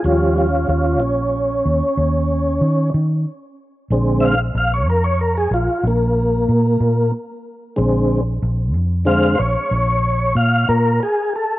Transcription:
<<
  \new Staff \with { instrumentName = "Tonewheel organ" } { \time 12/8 \key ees \major \tempo 4. = 62 <f g des' f'>8 <des' f'>8 <des' f'>8 des'2. r4. | <d aes c'>8 <e'' f''>16 r16 f''16 des''16 bes'16 des''16 bes'16 aes'16 f'8 bes2 r4 | <d aes c'>8 r4. <d aes c' f''>8 <c'' des''>4. f''8 bes'8 aes'8 a'8 | }
  \new Staff \with { instrumentName = "Fingered electric bass" } { \clef bass \time 12/8 \key ees \major ees,4 ees,8 bes,,4 ees,16 r16 ees,4 ees8 ees8 r4 | bes,,4 bes,,8 f,4 bes,,16 r16 bes,,4 bes,8 bes,8 r4 | bes,,4 bes,,8 f,4 bes,,16 r16 bes,,4 bes,8 bes,8 r4 | }
>>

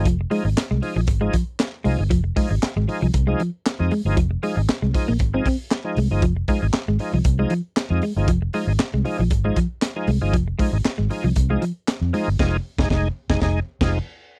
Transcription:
<<
  \new Staff \with { instrumentName = "Clean electric guitar" } { \clef bass \time 4/4 \key f \minor \tempo 4 = 117 f16 r16 aes16 r8 aes16 r16 f16 r16 aes16 f16 r8. aes16 r16 | f16 r16 aes16 r8 aes16 r16 f16 r16 aes16 f16 r8. aes16 r16 | f16 r16 aes16 r8 aes16 r16 bes16 r16 c'16 c'16 r8. aes16 r16 | f16 r16 aes16 r8 aes16 r16 f16 r16 aes16 f16 r8. aes16 r16 |
f16 r16 aes16 r8 aes16 r16 f16 r16 aes16 f16 r8. aes16 r16 | f16 r16 aes16 r8 aes16 r16 f16 r16 aes16 f16 r8. aes16 r16 | r1 | }
  \new Staff \with { instrumentName = "Tonewheel organ" } { \clef bass \time 4/4 \key f \minor r8 <f aes ees'>16 <aes ees'>16 r8 <f aes ees'>16 <aes ees'>16 r16 <f aes ees'>16 r4 <f aes ees'>16 <aes ees'>16 | r8 <f aes ees'>16 <aes ees'>16 r8 <f aes ees'>16 <aes ees'>16 r16 <f aes ees'>16 r8. <f aes ees'>16 r16 <f aes ees'>16 | r8 <f aes ees'>16 <aes ees'>16 r8 <f aes ees'>16 <aes ees'>16 r16 <f aes ees'>16 r8. <f aes ees'>16 r16 <f aes ees'>16 | r8 <f aes ees'>16 <aes ees'>16 r8 <f aes ees'>16 ees'16 r16 <f aes ees'>16 r8. <f aes ees'>16 r16 <f aes ees'>16 |
r8 <f aes ees'>16 <aes ees'>16 r8 <f aes ees'>16 <aes ees'>16 r16 <f aes ees'>16 r8. <f aes ees'>16 r16 <f aes ees'>16 | r8 <f aes ees'>16 <aes ees'>16 r8 <f aes ees'>16 <aes ees'>16 r16 <f aes ees'>16 r4 <f aes ees'>16 r16 | <f aes ees'>8 r16 <aes ees'>16 <aes ees'>8 r16 <aes ees'>16 <aes ees'>8 r16 <f aes ees'>8 r8. | }
  \new Staff \with { instrumentName = "Fingered electric bass" } { \clef bass \time 4/4 \key f \minor f,,8 r16 aes,,16 r16 c,16 r16 bes,,16 aes,,8 r4 c,16 g,,16 | f,,8 r16 aes,,16 r16 aes,,16 r16 c,16 c,8 r8. f,16 r16 g,,16 | f,,8 r16 aes,,16 r16 c,16 r16 bes,,16 aes,,8 r4 c,16 g,,16 | f,,8 r16 aes,,16 r16 aes,,16 r16 c,16 c,8 r8. f,16 r16 g,,16 |
f,,8 r16 aes,,16 r16 c,16 r16 bes,,16 aes,,8 r4 c,16 g,,16 | f,,8 r16 aes,,16 r16 aes,,16 r16 c,16 c,8 r8. f,16 r16 g,,16 | f,,8 r16 f,,16 f,,8 r16 f,,16 f,,8 r16 f,,8 r8. | }
  \new DrumStaff \with { instrumentName = "Drums" } \drummode { \time 4/4 <hh bd>8 hho8 <hc hh sn>8 hho8 <hh bd>8 <hh bd>8 <hc hh sn>8 hho8 | <hh bd>8 <hho bd>8 <hc hh sn>8 hho8 <hh bd>8 hh8 <hc hh sn>8 hho8 | <hh bd>8 hho8 <hc hh sn>8 <hho bd>8 <hh bd>8 <hho bd>8 <hc hh sn>8 hho8 | <hh bd>8 <hho bd>8 <hc hh sn>8 hho8 <hh bd>8 hh8 <hc hh sn>8 hho8 |
<hh bd>8 hho8 <hc hh sn>8 hho8 <hh bd>8 <hh bd>8 <hc hh sn>8 hho8 | <hh bd>8 <hho bd>8 <hc hh sn>8 hho8 <hh bd>8 hh8 <hc hh sn>8 hho8 | <cymc bd sn>8. <bd sn>16 <bd sn>8. <bd sn>16 <bd sn>8. <cymc bd sn>16 r4 | }
>>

